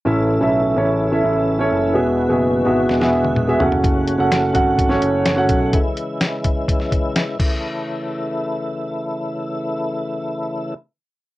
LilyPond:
<<
  \new Staff \with { instrumentName = "Grand piano" } { \time 4/4 \key a \major \tempo 4 = 127 <cis' e' a' e''>8 r16 <cis' e' a' e''>8 r16 <cis' e' a' cis''>8 r16 <cis' e' a' e''>8. r16 <cis' e' a' cis''>8 r16 | <b fis' gis' e''>8 r16 <b fis' gis' e''>8 r16 <b fis' gis' e''>8 r16 <b fis' gis' e''>8. r16 <b fis' gis' e''>16 <cis' fis' a' fis''>8~ | <cis' fis' a' fis''>8 r16 <cis' fis' a' fis''>8 r16 <cis' fis' a' fis''>8 r16 <cis' fis' a' cis''>8. r16 <cis' fis' a' fis''>8 r16 | r1 |
r1 | r1 | }
  \new Staff \with { instrumentName = "Grand piano" } { \clef bass \time 4/4 \key a \major <a, e>4. r2 r8 | b,4. r2 cis8~ | cis4 r2. | r1 |
r1 | r1 | }
  \new Staff \with { instrumentName = "Tonewheel organ" } { \time 4/4 \key a \major e'1 | fis'1~ | fis'1 | e'2.~ e'8 <cis e a e'>8~ |
<cis e a e'>1~ | <cis e a e'>1 | }
  \new Staff \with { instrumentName = "Tonewheel organ" } { \clef bass \time 4/4 \key a \major << { <e a>1 | <gis b>2.~ <gis b>8 <fis a>8~ | <fis a>1 | <e gis>2.~ <e gis>8 r8 |
r1 | r1 | } \\ { cis1 | r2. r8 cis8~ | cis1~ | cis2.~ cis8 r8 |
r1 | r1 | } >> }
  \new Staff \with { instrumentName = "Picked electric bass" } { \clef bass \time 4/4 \key a \major a,,8. b,,8. a,,4 a,,4 fis,,8 | e,,8. fis,,8. gis,,8 e,,4. fis,,8~ | fis,,8. fis,,8. gis,,4 fis,,4 b,,8 | r1 |
r1 | r1 | }
  \new DrumStaff \with { instrumentName = "Drums" } \drummode { \time 4/4 r4 r4 r4 r4 | r4 r4 sn16 sn8 tommh16 toml8 tomfh16 tomfh16 | <hh bd>8 hh8 <hh sn>8 <hh bd>8 <hh bd>16 sn16 hh8 <hh sn>8 <hh bd>8 | <hh bd>8 hh8 <hh sn>8 <hh bd>8 <hh bd>16 sn16 <hh bd>8 <hh sn>8 <cymc bd>8 |
r4 r4 r4 r4 | r4 r4 r4 r4 | }
>>